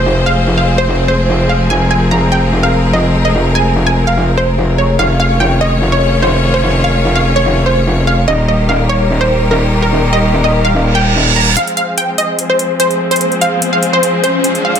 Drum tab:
HH |--------------------------------|--------------------------------|--------------------------------|--------------------------------|

HH |--------------------------------|--------------------------------|--------------------------------|x-x-x---x---x---x---x---x-x---xx|

HH |x-x-x---x---x---x---x---x-x---x-|